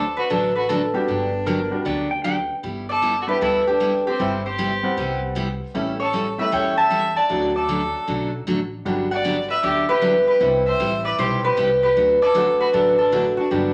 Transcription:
Already playing: upright bass D2, harp G4 C5 D5 E5, fiddle A4
0.17 fiddle F#4, harp B4
0.30 upright bass A1, steel-string acoustic guitar D3 F#3 A3 D4 F#4, fiddle D4, harp A4
0.56 fiddle F#4, harp B4
0.69 steel-string acoustic guitar D3 F#3 A3 D4 F#4, fiddle D4, harp A4
0.94 upright piano G3 B3 D4 F#4, fiddle D4, harp G4
1.08 upright bass G1, steel-string acoustic guitar D3 F#3 B3 D4 G4
1.46 steel-string acoustic guitar D3 F#3 B3 D4 G4, electric slide guitar A#4
1.71 upright piano G3 B3 D4 F#4
1.85 upright bass D2, steel-string acoustic guitar D3 F#3 B3 D4 G4, electric slide guitar D5
2.11 electric slide guitar G5
2.24 steel-string acoustic guitar D3 F#3 B3 D4 G4, electric slide guitar G5
2.63 upright bass G1, steel-string acoustic guitar G3 B3 E4 G4
2.89 fiddle A4, harp D5
3.02 steel-string acoustic guitar G3 B3 E4 G4
3.22 fiddle F#4, harp A4
3.27 upright piano G3 B3 D4 E4, fiddle G4, harp B4
3.41 upright bass D2, steel-string acoustic guitar G3 B3 E4 G4, fiddle E4, harp A4
3.67 fiddle D4, harp G4
3.80 steel-string acoustic guitar G3 B3 E4 G4
4.07 fiddle C4, harp G4
4.19 upright bass G1, steel-string acoustic guitar C3 G3 B3 E4 G4, upright piano G3 B3 C4 E4
4.46 fiddle G4, harp C5
4.58 steel-string acoustic guitar C3 G3 B3 E4 G4
4.83 upright piano G3 C4 F#5
4.97 upright bass C2, steel-string acoustic guitar C3 G3 B3 E4 G4
5.35 steel-string acoustic guitar C3 G3 B3 E4 G4
5.74 upright bass A1, steel-string acoustic guitar E3 G3 C#4 E4 A4, upright piano G3 A3 C#4 E4
6.00 fiddle A4, harp C#5
6.13 steel-string acoustic guitar E3 G3 C#4 E4 A4
6.38 upright piano G3 A3 C#4 E4, fiddle B4, harp E5
6.52 upright bass E2, steel-string acoustic guitar E3 G3 C#4 E4 A4, fiddle C#5, harp G5
6.77 fiddle E5, harp A5
6.90 steel-string acoustic guitar E3 G3 C#4 E4 A4
7.16 fiddle D5, harp A5
7.29 upright bass D2, steel-string acoustic guitar D3 F#3 A3 D4 F#4, upright piano F#3 A3 D4 F#4
7.56 fiddle A4, harp D5
7.68 steel-string acoustic guitar D3 F#3 A3 D4 F#4
8.07 upright bass B1, steel-string acoustic guitar D3 F#3 A3 D4 F#4
8.47 upright bass A1, steel-string acoustic guitar D3 F#3 A3 D4 F#4
8.85 upright bass G1, steel-string acoustic guitar D3 F#3 B3 D4 G4, upright piano G3 B3 D4 F#4
9.11 fiddle D5, harp F#5
9.24 steel-string acoustic guitar D3 F#3 B3 D4 G4
9.50 fiddle B4, harp E5
9.63 upright bass D2, steel-string acoustic guitar D3 F#3 B3 D4 G4, fiddle G4, harp D5
9.89 fiddle G4, harp B4
10.02 steel-string acoustic guitar D3 F#3 B3 D4 G4, upright piano G3 B3 D4 E4
10.27 fiddle G4, harp B4
10.40 upright bass C2, steel-string acoustic guitar C3 G3 B3 E4 G4, upright piano G3 C4 E4
10.66 fiddle C5, harp E5
10.80 upright bass A1, steel-string acoustic guitar C3 G3 B3 E4 G4
11.04 fiddle B4, harp D5
11.18 upright bass B1, steel-string acoustic guitar C3 G3 B3 E4 G4, fiddle G4, harp C5
11.44 fiddle G4, harp B4
11.57 upright bass C2, steel-string acoustic guitar C3 G3 B3 E4 G4
11.83 fiddle G4, harp B4
11.96 upright bass D2, steel-string acoustic guitar D3 F#3 A3 D4 F#4
12.21 fiddle A4, harp D5
12.34 steel-string acoustic guitar D3 F#3 A3 D4 F#4, upright piano F#3 A3 D4 F#4
12.60 fiddle F#4, harp B4
12.73 upright bass A1, steel-string acoustic guitar D3 F#3 A3 D4 F#4, fiddle D4, harp A4
12.98 fiddle D4, harp A4
13.12 steel-string acoustic guitar D3 F#3 A3 D4 F#4, upright piano F#3 A3 D4 F#4
13.37 fiddle D4, harp F#4
13.51 upright bass G1, steel-string acoustic guitar D3 F#3 B3 D4 G4, upright piano G3 B3 D4 F#4, fiddle D4, harp G4

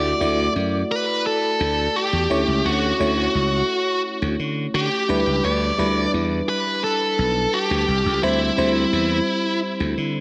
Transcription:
Already playing: slap bass D2, fm electric piano A3 E4 F#4 D5, lead electric guitar D5
0.20 slap bass D2, fm electric piano A3 E4 F#4 D5
0.56 slap bass F#2
0.92 lead electric guitar B4
1.26 lead electric guitar A4
1.60 slap bass D2
1.96 lead electric guitar G4
2.13 slap bass E2
2.30 slap bass D2, fm electric piano A3 C#4 E4 C#5
2.48 slap bass C#2
2.65 slap bass D2, lead electric guitar F#4
2.99 slap bass D2, fm electric piano A3 C#4 E4 C#5
3.35 slap bass C#2
4.22 slap bass D2
4.39 slap bass D3
4.74 slap bass D3, lead electric guitar G4
5.09 slap bass D2, fm electric piano G3 D4 E4 B4
5.26 slap bass C#2
5.44 slap bass D2, lead electric guitar D5
5.78 slap bass D2, fm electric piano G3 D4 E4 B4
6.14 slap bass E2
6.49 lead electric guitar B4
6.84 lead electric guitar A4
7.18 slap bass B1
7.54 lead electric guitar G4
7.71 slap bass D2
7.88 slap bass C2
8.06 slap bass C#2
8.23 slap bass D2, fm electric piano G3 C4 E4 C5, lead electric guitar E4
8.57 slap bass D2, fm electric piano G3 C4 E4 C5
8.93 slap bass E2
9.80 slap bass D2
9.97 slap bass D3

